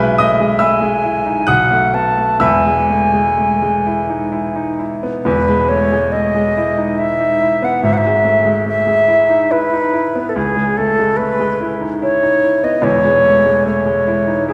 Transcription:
Already playing: grand piano B1 B4 G#5 B5, flute E5
0.00 grand piano G#3
0.18 grand piano A3 D#5 D#6
0.40 grand piano G#3
0.59 grand piano A3 E5 B5 E6, flute G#5
0.81 grand piano G#3
1.04 grand piano E4
1.26 grand piano D#4
1.47 grand piano B1 F#5 D#6 F#6, flute F#5
1.71 grand piano A3
1.94 grand piano B3, flute A5
2.17 grand piano A3
2.40 grand piano E1 E2 E5 B5 E6, flute G#5
2.66 grand piano G#3
2.90 grand piano A3
3.13 grand piano G#3
3.38 grand piano A3
3.62 grand piano G#3
3.86 grand piano E4
4.10 grand piano D#4
4.32 grand piano E4
4.56 grand piano D#4
4.79 grand piano E4
5.03 grand piano B3
5.25 grand piano E1 E2, flute B4
5.49 grand piano G#3
5.69 grand piano A3, flute C#5
5.92 grand piano G#3
6.12 grand piano A3, flute D#5
6.35 grand piano G#3
6.57 grand piano E4
6.78 grand piano D#4
6.99 grand piano E4, flute E5
7.21 grand piano D#4
7.42 grand piano E4
7.62 grand piano B3, flute F#5
7.83 grand piano G#1 G#2, flute E5
7.93 flute F#5
7.98 flute E5
8.06 grand piano G#3
8.24 grand piano A3
8.45 grand piano G#3
8.66 grand piano A3, flute E5
8.87 grand piano G#3
9.08 grand piano E4
9.30 grand piano D#4
9.51 grand piano E4, flute B4
9.73 grand piano D#4
9.93 grand piano E4
10.15 grand piano B3
10.29 flute A4
10.35 grand piano C#2, flute G#4
10.56 grand piano G#3
10.77 grand piano A3, flute A4
10.99 grand piano G#3
11.17 grand piano A3, flute B4
11.39 grand piano G#3
11.61 grand piano E4
11.81 grand piano D#4
12.02 grand piano E4, flute C#5
12.23 grand piano D#4
12.44 grand piano E4
12.63 grand piano B3, flute D#5
12.82 grand piano E1 E2, flute C#5
13.05 grand piano G#3
13.25 grand piano A3
13.46 grand piano G#3
13.66 grand piano A3, flute C#5
13.86 grand piano G#3
14.07 grand piano E4
14.28 grand piano D#4
14.48 grand piano E4, flute G#4

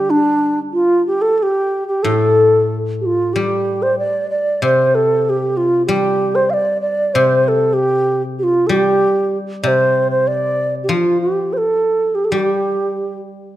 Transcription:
Already playing: guzheng D3 G3, xiao G4
0.10 xiao D4
0.73 xiao F4
1.07 xiao G4
1.22 xiao A4
1.38 xiao A4
1.43 xiao G4
1.88 xiao G4
2.03 guzheng A2, xiao A4
3.01 xiao G4
3.06 xiao F4
3.33 guzheng G3, xiao G4
3.82 xiao C5
3.99 xiao D5
4.30 xiao D5
4.62 guzheng C3, xiao C5
4.95 xiao A4
5.25 xiao A4
5.30 xiao G4
5.57 xiao F4
5.86 guzheng G3, xiao G4
6.35 xiao C5
6.50 xiao D5 F5
6.81 xiao D5
7.14 guzheng C3, xiao C5
7.44 xiao C5
7.48 xiao A4
7.74 xiao G4
8.39 xiao G4
8.43 xiao F4
8.67 guzheng G3, xiao G4 A4
9.63 guzheng C3, xiao D5
9.68 xiao C5
10.11 xiao C5
10.27 xiao D5
10.84 xiao G4
10.89 guzheng F3, xiao G4
10.93 xiao F4
11.21 xiao G4
11.53 xiao C5
11.57 xiao A4
12.15 xiao G4
12.25 xiao A4
12.31 guzheng G3, xiao G4

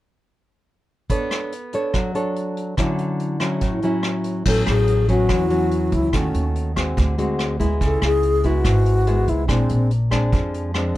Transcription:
1.10 nylon-string guitar B3 D4 A4 C#5, kick, closed hi-hat
1.31 cross-stick, closed hi-hat
1.52 closed hi-hat
1.73 nylon-string guitar D4 A4 C#5, closed hi-hat
1.94 nylon-string guitar F#3, kick, cross-stick, closed hi-hat
2.15 nylon-string guitar D4 A4 C#5, closed hi-hat
2.36 closed hi-hat
2.57 closed hi-hat
2.77 nylon-string guitar D3 F#3 C#4 E4, kick, cross-stick, closed hi-hat
2.98 closed hi-hat
3.20 closed hi-hat
3.40 nylon-string guitar F#3 C#4 E4, cross-stick, closed hi-hat
3.61 nylon-string guitar A2, kick, closed hi-hat
3.82 nylon-string guitar F#3 C#4 E4, closed hi-hat
4.03 cross-stick, closed hi-hat
4.24 closed hi-hat
4.45 upright bass A1, nylon-string guitar A2 F#3 B3 C#4, alto flute A4, kick, crash
4.67 upright bass A1, alto flute G#4, cross-stick, closed hi-hat
4.87 closed hi-hat
5.08 nylon-string guitar F#3 B3 C#4, alto flute F#4, kick, closed hi-hat
5.29 upright bass E2, nylon-string guitar E3, kick, cross-stick, closed hi-hat
5.50 nylon-string guitar F#3 B3 C#4, closed hi-hat
5.71 closed hi-hat
5.92 upright bass C#2, alto flute E4, kick, closed hi-hat
6.13 upright bass D#2, nylon-string guitar D#3 A3 C#4 F#4, alto flute C#4, kick, cross-stick, closed hi-hat
6.34 upright bass D#2, closed hi-hat
6.56 closed hi-hat
6.76 nylon-string guitar G#3 C4 F#4, kick, cross-stick, closed hi-hat
6.97 upright bass D2, nylon-string guitar D3, kick, closed hi-hat
7.18 nylon-string guitar G#3 C4 F#4, closed hi-hat
7.39 cross-stick, closed hi-hat
7.60 upright bass D2, nylon-string guitar G#3 B3 E4, kick, closed hi-hat
7.81 upright bass C#2, nylon-string guitar C#3, kick, closed hi-hat
7.85 alto flute A4
8.02 upright bass C#2, alto flute G#4, cross-stick, closed hi-hat
8.23 closed hi-hat
8.43 nylon-string guitar G#3 B3 E4, alto flute F#4, kick, closed hi-hat
8.64 upright bass G#1, nylon-string guitar G#2, kick, cross-stick, closed hi-hat
8.86 closed hi-hat
9.07 nylon-string guitar G#3 B3 E4, closed hi-hat
9.28 upright bass C#2, alto flute E4, kick, closed hi-hat
9.48 upright bass A#1, nylon-string guitar A#2 G#3 C4 D4, alto flute C4, kick, cross-stick, closed hi-hat
9.69 upright bass A#1, closed hi-hat
9.91 closed hi-hat
10.11 nylon-string guitar G#3 C4 D4, kick, cross-stick, closed hi-hat
10.32 upright bass F2, nylon-string guitar F3, kick, closed hi-hat
10.54 closed hi-hat
10.74 nylon-string guitar G#3 C4 D4, cross-stick, closed hi-hat

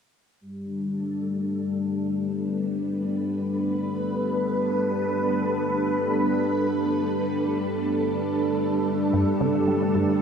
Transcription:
0.40 string machine G3
0.62 string machine D4
0.88 string machine A4
2.18 string machine B4
9.13 synth arpeggio sound G2
9.40 synth arpeggio sound C#3
9.68 synth arpeggio sound G3
9.95 synth arpeggio sound G2

